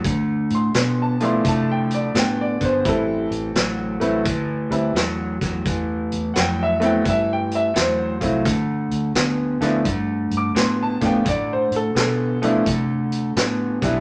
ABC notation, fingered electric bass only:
X:1
M:4/4
L:1/8
Q:"Swing" 1/4=86
K:Ddor
V:1 name="Fingered electric bass" clef=bass
D,, A,, B,,2 C,2 A,, G,,, | A,,, A,,, A,,, A,,, D,, D,, E,, E,, | E,, E,, F,,2 G,,2 E,, C,, | D,, D,, D,, D,, G,, G,, A,, A,, |
A,, A,, B,,2 C,2 A,, B,,, |]